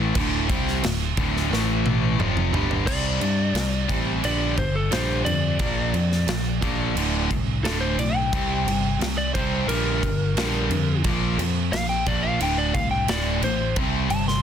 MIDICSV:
0, 0, Header, 1, 5, 480
1, 0, Start_track
1, 0, Key_signature, -1, "minor"
1, 0, Tempo, 681044
1, 107, Time_signature, 4, 2, 24, 8
1, 10163, End_track
2, 0, Start_track
2, 0, Title_t, "Lead electric guitar"
2, 0, Program_c, 0, 29
2, 2022, Note_on_c, 0, 74, 95
2, 2957, Note_off_c, 0, 74, 0
2, 2994, Note_on_c, 0, 74, 86
2, 3224, Note_off_c, 0, 74, 0
2, 3229, Note_on_c, 0, 72, 86
2, 3345, Note_off_c, 0, 72, 0
2, 3351, Note_on_c, 0, 69, 80
2, 3466, Note_off_c, 0, 69, 0
2, 3475, Note_on_c, 0, 72, 74
2, 3696, Note_off_c, 0, 72, 0
2, 3699, Note_on_c, 0, 74, 108
2, 5117, Note_off_c, 0, 74, 0
2, 5387, Note_on_c, 0, 69, 87
2, 5498, Note_off_c, 0, 69, 0
2, 5501, Note_on_c, 0, 72, 102
2, 5622, Note_off_c, 0, 72, 0
2, 5633, Note_on_c, 0, 74, 90
2, 5746, Note_off_c, 0, 74, 0
2, 5746, Note_on_c, 0, 79, 97
2, 6446, Note_off_c, 0, 79, 0
2, 6467, Note_on_c, 0, 74, 83
2, 6581, Note_off_c, 0, 74, 0
2, 6584, Note_on_c, 0, 72, 82
2, 6820, Note_off_c, 0, 72, 0
2, 6825, Note_on_c, 0, 70, 108
2, 7758, Note_off_c, 0, 70, 0
2, 8265, Note_on_c, 0, 77, 108
2, 8378, Note_off_c, 0, 77, 0
2, 8381, Note_on_c, 0, 79, 96
2, 8500, Note_off_c, 0, 79, 0
2, 8509, Note_on_c, 0, 74, 93
2, 8619, Note_on_c, 0, 77, 102
2, 8625, Note_off_c, 0, 74, 0
2, 8739, Note_off_c, 0, 77, 0
2, 8757, Note_on_c, 0, 79, 90
2, 8867, Note_on_c, 0, 74, 98
2, 8868, Note_off_c, 0, 79, 0
2, 8978, Note_on_c, 0, 77, 101
2, 8983, Note_off_c, 0, 74, 0
2, 9095, Note_off_c, 0, 77, 0
2, 9097, Note_on_c, 0, 79, 100
2, 9218, Note_off_c, 0, 79, 0
2, 9228, Note_on_c, 0, 74, 81
2, 9459, Note_off_c, 0, 74, 0
2, 9472, Note_on_c, 0, 72, 95
2, 9701, Note_off_c, 0, 72, 0
2, 9941, Note_on_c, 0, 81, 110
2, 10059, Note_off_c, 0, 81, 0
2, 10065, Note_on_c, 0, 84, 93
2, 10163, Note_off_c, 0, 84, 0
2, 10163, End_track
3, 0, Start_track
3, 0, Title_t, "Distorted electric guitar"
3, 0, Program_c, 1, 30
3, 0, Note_on_c, 1, 45, 85
3, 0, Note_on_c, 1, 52, 104
3, 0, Note_on_c, 1, 57, 103
3, 99, Note_off_c, 1, 45, 0
3, 101, Note_off_c, 1, 52, 0
3, 102, Note_off_c, 1, 57, 0
3, 106, Note_on_c, 1, 38, 97
3, 110, Note_on_c, 1, 45, 104
3, 112, Note_on_c, 1, 50, 111
3, 337, Note_off_c, 1, 38, 0
3, 340, Note_off_c, 1, 45, 0
3, 340, Note_on_c, 1, 48, 103
3, 342, Note_off_c, 1, 50, 0
3, 343, Note_on_c, 1, 55, 102
3, 349, Note_on_c, 1, 60, 108
3, 576, Note_off_c, 1, 48, 0
3, 577, Note_off_c, 1, 55, 0
3, 581, Note_off_c, 1, 60, 0
3, 587, Note_on_c, 1, 38, 71
3, 590, Note_on_c, 1, 45, 70
3, 779, Note_off_c, 1, 38, 0
3, 780, Note_off_c, 1, 45, 0
3, 829, Note_on_c, 1, 38, 89
3, 830, Note_on_c, 1, 45, 81
3, 834, Note_on_c, 1, 50, 90
3, 1061, Note_off_c, 1, 38, 0
3, 1061, Note_off_c, 1, 45, 0
3, 1063, Note_off_c, 1, 50, 0
3, 1070, Note_on_c, 1, 45, 94
3, 1074, Note_on_c, 1, 52, 91
3, 1076, Note_on_c, 1, 57, 105
3, 1541, Note_off_c, 1, 45, 0
3, 1543, Note_off_c, 1, 52, 0
3, 1544, Note_off_c, 1, 57, 0
3, 1550, Note_on_c, 1, 41, 98
3, 1552, Note_on_c, 1, 48, 104
3, 1553, Note_on_c, 1, 53, 101
3, 1781, Note_off_c, 1, 41, 0
3, 1782, Note_off_c, 1, 48, 0
3, 1783, Note_off_c, 1, 53, 0
3, 1789, Note_on_c, 1, 43, 91
3, 1791, Note_on_c, 1, 50, 96
3, 1794, Note_on_c, 1, 55, 99
3, 2019, Note_off_c, 1, 55, 0
3, 2021, Note_off_c, 1, 43, 0
3, 2022, Note_off_c, 1, 50, 0
3, 2027, Note_on_c, 1, 48, 77
3, 2028, Note_on_c, 1, 55, 85
3, 2031, Note_on_c, 1, 60, 93
3, 2253, Note_off_c, 1, 48, 0
3, 2253, Note_off_c, 1, 55, 0
3, 2255, Note_off_c, 1, 60, 0
3, 2264, Note_on_c, 1, 48, 70
3, 2269, Note_on_c, 1, 55, 76
3, 2482, Note_off_c, 1, 48, 0
3, 2484, Note_off_c, 1, 55, 0
3, 2501, Note_on_c, 1, 48, 68
3, 2502, Note_on_c, 1, 55, 79
3, 2720, Note_off_c, 1, 48, 0
3, 2721, Note_off_c, 1, 55, 0
3, 2737, Note_on_c, 1, 48, 83
3, 2742, Note_on_c, 1, 55, 86
3, 2743, Note_on_c, 1, 60, 88
3, 2968, Note_off_c, 1, 48, 0
3, 2971, Note_off_c, 1, 55, 0
3, 2971, Note_off_c, 1, 60, 0
3, 2980, Note_on_c, 1, 43, 80
3, 2985, Note_on_c, 1, 50, 92
3, 2985, Note_on_c, 1, 55, 98
3, 3210, Note_off_c, 1, 43, 0
3, 3212, Note_off_c, 1, 50, 0
3, 3212, Note_off_c, 1, 55, 0
3, 3223, Note_on_c, 1, 43, 73
3, 3225, Note_on_c, 1, 50, 70
3, 3442, Note_off_c, 1, 43, 0
3, 3443, Note_off_c, 1, 50, 0
3, 3461, Note_on_c, 1, 43, 91
3, 3465, Note_on_c, 1, 50, 99
3, 3468, Note_on_c, 1, 55, 116
3, 3691, Note_off_c, 1, 43, 0
3, 3693, Note_off_c, 1, 50, 0
3, 3694, Note_off_c, 1, 55, 0
3, 3707, Note_on_c, 1, 43, 66
3, 3710, Note_on_c, 1, 50, 78
3, 3924, Note_off_c, 1, 43, 0
3, 3925, Note_off_c, 1, 50, 0
3, 3945, Note_on_c, 1, 46, 84
3, 3948, Note_on_c, 1, 53, 99
3, 3951, Note_on_c, 1, 58, 102
3, 4173, Note_off_c, 1, 46, 0
3, 4174, Note_off_c, 1, 53, 0
3, 4176, Note_off_c, 1, 58, 0
3, 4186, Note_on_c, 1, 46, 74
3, 4189, Note_on_c, 1, 53, 81
3, 4404, Note_off_c, 1, 46, 0
3, 4405, Note_off_c, 1, 53, 0
3, 4430, Note_on_c, 1, 46, 73
3, 4433, Note_on_c, 1, 53, 88
3, 4646, Note_off_c, 1, 46, 0
3, 4647, Note_off_c, 1, 53, 0
3, 4672, Note_on_c, 1, 46, 82
3, 4675, Note_on_c, 1, 53, 81
3, 4677, Note_on_c, 1, 58, 86
3, 4897, Note_off_c, 1, 46, 0
3, 4898, Note_off_c, 1, 53, 0
3, 4899, Note_off_c, 1, 58, 0
3, 4914, Note_on_c, 1, 38, 83
3, 4915, Note_on_c, 1, 45, 100
3, 4918, Note_on_c, 1, 50, 93
3, 5138, Note_off_c, 1, 38, 0
3, 5138, Note_off_c, 1, 45, 0
3, 5139, Note_off_c, 1, 50, 0
3, 5154, Note_on_c, 1, 38, 82
3, 5158, Note_on_c, 1, 45, 74
3, 5368, Note_off_c, 1, 38, 0
3, 5370, Note_off_c, 1, 45, 0
3, 5394, Note_on_c, 1, 38, 85
3, 5397, Note_on_c, 1, 45, 102
3, 5401, Note_on_c, 1, 50, 96
3, 5618, Note_off_c, 1, 38, 0
3, 5619, Note_off_c, 1, 45, 0
3, 5621, Note_off_c, 1, 50, 0
3, 5635, Note_on_c, 1, 38, 73
3, 5637, Note_on_c, 1, 45, 76
3, 5849, Note_off_c, 1, 38, 0
3, 5849, Note_off_c, 1, 45, 0
3, 5875, Note_on_c, 1, 48, 89
3, 5877, Note_on_c, 1, 55, 92
3, 5878, Note_on_c, 1, 60, 91
3, 6098, Note_off_c, 1, 48, 0
3, 6099, Note_off_c, 1, 55, 0
3, 6100, Note_off_c, 1, 60, 0
3, 6116, Note_on_c, 1, 48, 75
3, 6119, Note_on_c, 1, 55, 78
3, 6329, Note_off_c, 1, 48, 0
3, 6331, Note_off_c, 1, 55, 0
3, 6353, Note_on_c, 1, 48, 68
3, 6358, Note_on_c, 1, 55, 76
3, 6567, Note_off_c, 1, 48, 0
3, 6570, Note_off_c, 1, 55, 0
3, 6595, Note_on_c, 1, 48, 80
3, 6597, Note_on_c, 1, 55, 87
3, 6599, Note_on_c, 1, 60, 95
3, 6818, Note_off_c, 1, 48, 0
3, 6819, Note_off_c, 1, 55, 0
3, 6820, Note_off_c, 1, 60, 0
3, 6828, Note_on_c, 1, 43, 84
3, 6830, Note_on_c, 1, 50, 87
3, 6836, Note_on_c, 1, 55, 102
3, 7054, Note_off_c, 1, 43, 0
3, 7055, Note_off_c, 1, 50, 0
3, 7058, Note_off_c, 1, 55, 0
3, 7070, Note_on_c, 1, 43, 63
3, 7075, Note_on_c, 1, 50, 79
3, 7286, Note_off_c, 1, 43, 0
3, 7288, Note_off_c, 1, 50, 0
3, 7309, Note_on_c, 1, 43, 85
3, 7314, Note_on_c, 1, 50, 90
3, 7314, Note_on_c, 1, 55, 101
3, 7535, Note_off_c, 1, 43, 0
3, 7537, Note_off_c, 1, 50, 0
3, 7537, Note_off_c, 1, 55, 0
3, 7548, Note_on_c, 1, 43, 71
3, 7551, Note_on_c, 1, 50, 90
3, 7764, Note_off_c, 1, 43, 0
3, 7766, Note_off_c, 1, 50, 0
3, 7788, Note_on_c, 1, 46, 85
3, 7792, Note_on_c, 1, 53, 83
3, 7793, Note_on_c, 1, 58, 100
3, 8014, Note_off_c, 1, 46, 0
3, 8016, Note_off_c, 1, 53, 0
3, 8016, Note_off_c, 1, 58, 0
3, 8031, Note_on_c, 1, 46, 68
3, 8034, Note_on_c, 1, 53, 81
3, 8245, Note_off_c, 1, 46, 0
3, 8247, Note_off_c, 1, 53, 0
3, 8262, Note_on_c, 1, 46, 65
3, 8265, Note_on_c, 1, 53, 78
3, 8481, Note_off_c, 1, 46, 0
3, 8482, Note_off_c, 1, 53, 0
3, 8507, Note_on_c, 1, 46, 94
3, 8509, Note_on_c, 1, 53, 98
3, 8512, Note_on_c, 1, 58, 87
3, 8732, Note_off_c, 1, 46, 0
3, 8733, Note_off_c, 1, 53, 0
3, 8735, Note_off_c, 1, 58, 0
3, 8743, Note_on_c, 1, 38, 91
3, 8748, Note_on_c, 1, 45, 96
3, 8750, Note_on_c, 1, 50, 95
3, 8970, Note_off_c, 1, 38, 0
3, 8973, Note_off_c, 1, 45, 0
3, 8974, Note_off_c, 1, 50, 0
3, 8981, Note_on_c, 1, 38, 72
3, 8983, Note_on_c, 1, 45, 73
3, 9199, Note_off_c, 1, 38, 0
3, 9200, Note_off_c, 1, 45, 0
3, 9222, Note_on_c, 1, 38, 97
3, 9225, Note_on_c, 1, 45, 96
3, 9227, Note_on_c, 1, 50, 98
3, 9449, Note_off_c, 1, 38, 0
3, 9450, Note_off_c, 1, 45, 0
3, 9451, Note_off_c, 1, 50, 0
3, 9463, Note_on_c, 1, 38, 77
3, 9465, Note_on_c, 1, 45, 77
3, 9679, Note_off_c, 1, 38, 0
3, 9681, Note_off_c, 1, 45, 0
3, 9700, Note_on_c, 1, 48, 91
3, 9704, Note_on_c, 1, 55, 97
3, 9704, Note_on_c, 1, 60, 91
3, 9927, Note_off_c, 1, 48, 0
3, 9929, Note_off_c, 1, 55, 0
3, 9929, Note_off_c, 1, 60, 0
3, 9936, Note_on_c, 1, 48, 73
3, 9942, Note_on_c, 1, 55, 79
3, 10155, Note_off_c, 1, 48, 0
3, 10159, Note_off_c, 1, 55, 0
3, 10163, End_track
4, 0, Start_track
4, 0, Title_t, "Picked electric bass"
4, 0, Program_c, 2, 34
4, 0, Note_on_c, 2, 33, 93
4, 79, Note_off_c, 2, 33, 0
4, 109, Note_on_c, 2, 26, 96
4, 331, Note_off_c, 2, 26, 0
4, 348, Note_on_c, 2, 36, 95
4, 571, Note_off_c, 2, 36, 0
4, 589, Note_on_c, 2, 26, 72
4, 811, Note_off_c, 2, 26, 0
4, 826, Note_on_c, 2, 26, 96
4, 1050, Note_off_c, 2, 26, 0
4, 1066, Note_on_c, 2, 33, 91
4, 1518, Note_off_c, 2, 33, 0
4, 1544, Note_on_c, 2, 29, 99
4, 1769, Note_off_c, 2, 29, 0
4, 1780, Note_on_c, 2, 31, 88
4, 2007, Note_off_c, 2, 31, 0
4, 2024, Note_on_c, 2, 36, 89
4, 2248, Note_off_c, 2, 36, 0
4, 2260, Note_on_c, 2, 43, 82
4, 2485, Note_off_c, 2, 43, 0
4, 2495, Note_on_c, 2, 36, 76
4, 2723, Note_off_c, 2, 36, 0
4, 2741, Note_on_c, 2, 33, 75
4, 2967, Note_off_c, 2, 33, 0
4, 2984, Note_on_c, 2, 34, 90
4, 3208, Note_off_c, 2, 34, 0
4, 3225, Note_on_c, 2, 31, 85
4, 3449, Note_off_c, 2, 31, 0
4, 3466, Note_on_c, 2, 34, 84
4, 3690, Note_off_c, 2, 34, 0
4, 3705, Note_on_c, 2, 41, 87
4, 3929, Note_off_c, 2, 41, 0
4, 3942, Note_on_c, 2, 34, 91
4, 4168, Note_off_c, 2, 34, 0
4, 4183, Note_on_c, 2, 41, 90
4, 4408, Note_off_c, 2, 41, 0
4, 4422, Note_on_c, 2, 34, 81
4, 4648, Note_off_c, 2, 34, 0
4, 4667, Note_on_c, 2, 34, 93
4, 4891, Note_off_c, 2, 34, 0
4, 4900, Note_on_c, 2, 26, 103
4, 5127, Note_off_c, 2, 26, 0
4, 5152, Note_on_c, 2, 36, 88
4, 5373, Note_off_c, 2, 36, 0
4, 5381, Note_on_c, 2, 26, 86
4, 5607, Note_off_c, 2, 26, 0
4, 5614, Note_on_c, 2, 35, 90
4, 5844, Note_off_c, 2, 35, 0
4, 5867, Note_on_c, 2, 36, 87
4, 6090, Note_off_c, 2, 36, 0
4, 6095, Note_on_c, 2, 31, 81
4, 6324, Note_off_c, 2, 31, 0
4, 6337, Note_on_c, 2, 36, 92
4, 6565, Note_off_c, 2, 36, 0
4, 6590, Note_on_c, 2, 36, 98
4, 6810, Note_off_c, 2, 36, 0
4, 6814, Note_on_c, 2, 34, 100
4, 7043, Note_off_c, 2, 34, 0
4, 7065, Note_on_c, 2, 31, 86
4, 7289, Note_off_c, 2, 31, 0
4, 7295, Note_on_c, 2, 34, 83
4, 7523, Note_off_c, 2, 34, 0
4, 7539, Note_on_c, 2, 41, 94
4, 7765, Note_off_c, 2, 41, 0
4, 7785, Note_on_c, 2, 34, 84
4, 8008, Note_off_c, 2, 34, 0
4, 8019, Note_on_c, 2, 41, 85
4, 8245, Note_off_c, 2, 41, 0
4, 8261, Note_on_c, 2, 34, 86
4, 8486, Note_off_c, 2, 34, 0
4, 8506, Note_on_c, 2, 34, 88
4, 8729, Note_off_c, 2, 34, 0
4, 8732, Note_on_c, 2, 26, 92
4, 8961, Note_off_c, 2, 26, 0
4, 8984, Note_on_c, 2, 36, 87
4, 9207, Note_off_c, 2, 36, 0
4, 9217, Note_on_c, 2, 26, 89
4, 9442, Note_off_c, 2, 26, 0
4, 9453, Note_on_c, 2, 33, 87
4, 9680, Note_off_c, 2, 33, 0
4, 9703, Note_on_c, 2, 36, 90
4, 9925, Note_off_c, 2, 36, 0
4, 9933, Note_on_c, 2, 31, 83
4, 10160, Note_off_c, 2, 31, 0
4, 10163, End_track
5, 0, Start_track
5, 0, Title_t, "Drums"
5, 106, Note_on_c, 9, 49, 86
5, 109, Note_on_c, 9, 36, 111
5, 176, Note_off_c, 9, 49, 0
5, 179, Note_off_c, 9, 36, 0
5, 349, Note_on_c, 9, 36, 118
5, 351, Note_on_c, 9, 49, 65
5, 420, Note_off_c, 9, 36, 0
5, 421, Note_off_c, 9, 49, 0
5, 476, Note_on_c, 9, 38, 34
5, 547, Note_off_c, 9, 38, 0
5, 589, Note_on_c, 9, 49, 68
5, 596, Note_on_c, 9, 38, 111
5, 659, Note_off_c, 9, 49, 0
5, 667, Note_off_c, 9, 38, 0
5, 825, Note_on_c, 9, 49, 66
5, 828, Note_on_c, 9, 36, 110
5, 896, Note_off_c, 9, 49, 0
5, 898, Note_off_c, 9, 36, 0
5, 961, Note_on_c, 9, 38, 39
5, 1032, Note_off_c, 9, 38, 0
5, 1081, Note_on_c, 9, 38, 69
5, 1151, Note_off_c, 9, 38, 0
5, 1309, Note_on_c, 9, 48, 73
5, 1379, Note_off_c, 9, 48, 0
5, 1550, Note_on_c, 9, 47, 72
5, 1620, Note_off_c, 9, 47, 0
5, 1670, Note_on_c, 9, 45, 82
5, 1740, Note_off_c, 9, 45, 0
5, 1790, Note_on_c, 9, 43, 100
5, 1861, Note_off_c, 9, 43, 0
5, 1909, Note_on_c, 9, 43, 95
5, 1980, Note_off_c, 9, 43, 0
5, 2025, Note_on_c, 9, 36, 111
5, 2028, Note_on_c, 9, 49, 73
5, 2028, Note_on_c, 9, 57, 109
5, 2095, Note_off_c, 9, 36, 0
5, 2098, Note_off_c, 9, 49, 0
5, 2098, Note_off_c, 9, 57, 0
5, 2264, Note_on_c, 9, 49, 59
5, 2334, Note_off_c, 9, 49, 0
5, 2502, Note_on_c, 9, 49, 72
5, 2509, Note_on_c, 9, 38, 98
5, 2572, Note_off_c, 9, 49, 0
5, 2580, Note_off_c, 9, 38, 0
5, 2745, Note_on_c, 9, 36, 87
5, 2747, Note_on_c, 9, 49, 59
5, 2815, Note_off_c, 9, 36, 0
5, 2817, Note_off_c, 9, 49, 0
5, 2986, Note_on_c, 9, 49, 80
5, 3056, Note_off_c, 9, 49, 0
5, 3224, Note_on_c, 9, 49, 49
5, 3225, Note_on_c, 9, 36, 82
5, 3294, Note_off_c, 9, 49, 0
5, 3296, Note_off_c, 9, 36, 0
5, 3466, Note_on_c, 9, 49, 65
5, 3473, Note_on_c, 9, 38, 110
5, 3536, Note_off_c, 9, 49, 0
5, 3544, Note_off_c, 9, 38, 0
5, 3708, Note_on_c, 9, 49, 61
5, 3779, Note_off_c, 9, 49, 0
5, 3941, Note_on_c, 9, 49, 79
5, 3945, Note_on_c, 9, 36, 113
5, 4011, Note_off_c, 9, 49, 0
5, 4015, Note_off_c, 9, 36, 0
5, 4185, Note_on_c, 9, 49, 57
5, 4256, Note_off_c, 9, 49, 0
5, 4312, Note_on_c, 9, 38, 32
5, 4382, Note_off_c, 9, 38, 0
5, 4424, Note_on_c, 9, 49, 64
5, 4432, Note_on_c, 9, 38, 109
5, 4494, Note_off_c, 9, 49, 0
5, 4502, Note_off_c, 9, 38, 0
5, 4669, Note_on_c, 9, 36, 82
5, 4670, Note_on_c, 9, 49, 62
5, 4739, Note_off_c, 9, 36, 0
5, 4741, Note_off_c, 9, 49, 0
5, 4911, Note_on_c, 9, 49, 87
5, 4981, Note_off_c, 9, 49, 0
5, 5150, Note_on_c, 9, 36, 84
5, 5151, Note_on_c, 9, 49, 55
5, 5220, Note_off_c, 9, 36, 0
5, 5221, Note_off_c, 9, 49, 0
5, 5392, Note_on_c, 9, 49, 77
5, 5400, Note_on_c, 9, 38, 86
5, 5462, Note_off_c, 9, 49, 0
5, 5470, Note_off_c, 9, 38, 0
5, 5629, Note_on_c, 9, 49, 64
5, 5700, Note_off_c, 9, 49, 0
5, 5870, Note_on_c, 9, 36, 103
5, 5870, Note_on_c, 9, 49, 73
5, 5940, Note_off_c, 9, 49, 0
5, 5941, Note_off_c, 9, 36, 0
5, 6115, Note_on_c, 9, 49, 60
5, 6186, Note_off_c, 9, 49, 0
5, 6352, Note_on_c, 9, 49, 76
5, 6359, Note_on_c, 9, 38, 92
5, 6422, Note_off_c, 9, 49, 0
5, 6430, Note_off_c, 9, 38, 0
5, 6590, Note_on_c, 9, 36, 89
5, 6590, Note_on_c, 9, 49, 64
5, 6660, Note_off_c, 9, 36, 0
5, 6661, Note_off_c, 9, 49, 0
5, 6829, Note_on_c, 9, 49, 77
5, 6900, Note_off_c, 9, 49, 0
5, 7069, Note_on_c, 9, 36, 81
5, 7073, Note_on_c, 9, 49, 55
5, 7140, Note_off_c, 9, 36, 0
5, 7143, Note_off_c, 9, 49, 0
5, 7308, Note_on_c, 9, 49, 69
5, 7316, Note_on_c, 9, 38, 100
5, 7378, Note_off_c, 9, 49, 0
5, 7386, Note_off_c, 9, 38, 0
5, 7546, Note_on_c, 9, 49, 57
5, 7616, Note_off_c, 9, 49, 0
5, 7782, Note_on_c, 9, 49, 77
5, 7786, Note_on_c, 9, 36, 108
5, 7853, Note_off_c, 9, 49, 0
5, 7857, Note_off_c, 9, 36, 0
5, 8028, Note_on_c, 9, 49, 58
5, 8098, Note_off_c, 9, 49, 0
5, 8267, Note_on_c, 9, 49, 75
5, 8275, Note_on_c, 9, 38, 100
5, 8338, Note_off_c, 9, 49, 0
5, 8346, Note_off_c, 9, 38, 0
5, 8502, Note_on_c, 9, 49, 63
5, 8505, Note_on_c, 9, 36, 89
5, 8573, Note_off_c, 9, 49, 0
5, 8575, Note_off_c, 9, 36, 0
5, 8743, Note_on_c, 9, 49, 77
5, 8813, Note_off_c, 9, 49, 0
5, 8982, Note_on_c, 9, 49, 54
5, 8984, Note_on_c, 9, 36, 80
5, 9052, Note_off_c, 9, 49, 0
5, 9054, Note_off_c, 9, 36, 0
5, 9220, Note_on_c, 9, 49, 69
5, 9228, Note_on_c, 9, 38, 112
5, 9291, Note_off_c, 9, 49, 0
5, 9299, Note_off_c, 9, 38, 0
5, 9462, Note_on_c, 9, 49, 61
5, 9532, Note_off_c, 9, 49, 0
5, 9699, Note_on_c, 9, 49, 74
5, 9702, Note_on_c, 9, 36, 112
5, 9769, Note_off_c, 9, 49, 0
5, 9773, Note_off_c, 9, 36, 0
5, 9939, Note_on_c, 9, 49, 65
5, 10010, Note_off_c, 9, 49, 0
5, 10065, Note_on_c, 9, 38, 34
5, 10135, Note_off_c, 9, 38, 0
5, 10163, End_track
0, 0, End_of_file